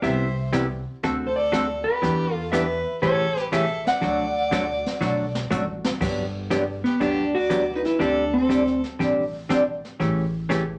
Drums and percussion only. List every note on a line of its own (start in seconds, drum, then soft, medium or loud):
0.04 brush sweep medium
0.04 kick soft
0.04 snare soft
0.53 kick soft
0.53 snare medium
0.53 hi-hat pedal medium
1.03 brush sweep medium
1.03 kick soft
1.03 snare soft
1.53 kick soft
1.53 snare medium
1.53 hi-hat pedal medium
2.03 brush sweep soft
2.03 kick soft
2.03 snare soft
2.53 kick soft
2.53 snare medium
2.53 hi-hat pedal medium
3.03 brush sweep medium
3.03 kick soft
3.03 snare soft
3.37 snare soft
3.52 kick soft
3.52 snare medium
3.52 hi-hat pedal medium
3.87 snare medium
4.02 brush sweep soft
4.02 kick soft
4.02 snare soft
4.52 kick soft
4.52 snare medium
4.52 hi-hat pedal medium
4.86 snare soft
5.02 snare soft
5.35 snare medium
5.52 hi-hat pedal soft
5.52 high tom medium
5.84 snare loud
6.01 brush sweep soft
6.01 kick medium
6.01 snare soft
6.01 crash medium
6.51 kick soft
6.51 snare medium
6.51 hi-hat pedal soft
6.85 snare soft
7.01 brush sweep soft
7.01 kick soft
7.01 snare soft
7.50 kick soft
7.50 snare medium
7.50 hi-hat pedal medium
7.85 snare soft
8.00 brush sweep soft
8.00 kick soft
8.00 snare soft
8.50 kick soft
8.50 snare medium
8.50 hi-hat pedal medium
8.67 snare soft
8.84 snare soft
9.00 brush sweep medium
9.00 kick soft
9.00 snare soft
9.50 kick soft
9.50 snare medium
9.50 hi-hat pedal medium
9.85 snare soft
10.00 brush sweep medium
10.00 kick soft
10.00 snare soft
10.50 kick soft
10.50 snare medium
10.50 hi-hat pedal medium